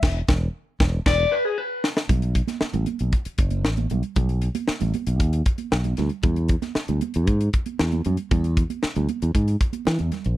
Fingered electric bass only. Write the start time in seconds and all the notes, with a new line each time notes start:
0.03 E1
0.29 E1
0.80 E1
1.06 E1
2.09 B1
2.62 muted fingered electric bass stroke
2.74 A1
3.01 B1
3.26 muted fingered electric bass stroke
3.39 F#1
3.65 A1
3.91 B1
4.17 B1
4.69 muted fingered electric bass stroke
4.82 A1
5.07 B1
5.21 D#2
5.72 B1
5.98 D2
6.24 E2
6.76 muted fingered electric bass stroke
6.89 D2
7.16 E2
7.28 G#2
7.80 E2
8.06 F#2
8.31 E2
8.84 muted fingered electric bass stroke
8.96 D2
9.22 E2
9.35 G#2
9.87 E3
10.00 E2
10.26 A#1